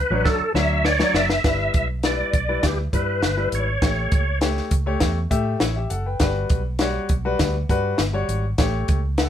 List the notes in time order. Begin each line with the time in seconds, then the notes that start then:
Already playing: B4
0.10 A1 F#3 D4 C#5
0.25 A4, kick, snare
0.40 muted fingered electric bass stroke
0.54 D2 F#3 D4 C#5 E5, snare
0.85 C#5 D5, snare
0.99 F#3 D4 C#5, snare
1.14 F#1 E5, snare
1.30 snare
1.44 G1 G3 E4 B4, kick, snare, closed hi-hat
1.74 B1 E5, kick, closed hi-hat
2.03 G3 E4 B4 D5, snare, closed hi-hat
2.33 B1, kick, closed hi-hat
2.49 G3 E4 B4
2.63 D2 G4, kick, snare, closed hi-hat
2.93 G2 G3 E4 B4, kick, closed hi-hat
3.23 G1, snare, closed hi-hat
3.37 G3 E4 B4
3.52 G#1 C#5, closed hi-hat
3.82 A1 A3 G4 C#5, kick, snare, closed hi-hat
4.12 C#2, kick, closed hi-hat
4.41 A3 G4 C#5, snare, closed hi-hat
4.57 snare
4.71 C#2, kick, closed hi-hat
4.86 A3 G4 C#5
5.00 E2, kick, snare, closed hi-hat
5.31 A2 A3 G4 E5, kick, closed hi-hat
5.60 A1 E4 C#5, snare, closed hi-hat
5.76 G4 E5
5.90 F#1 A4 F#5, closed hi-hat
6.06 B4 G5
6.20 G1 G3 F#4 B4, kick, snare, closed hi-hat
6.50 B1, kick, closed hi-hat
6.79 G3 F#4 C#5, snare, closed hi-hat
7.09 B1, kick, closed hi-hat
7.25 G3 F#4 B4
7.39 D2, kick, snare, closed hi-hat
7.69 G2 G3 F#4 B4, kick, closed hi-hat
7.98 G1, snare, closed hi-hat
8.13 G3 F#4 C#5
8.28 G#1, closed hi-hat
8.58 A1 A3 G4 C#5, kick, snare, closed hi-hat
8.88 C#2, kick, closed hi-hat
9.18 A4 F#5, snare, closed hi-hat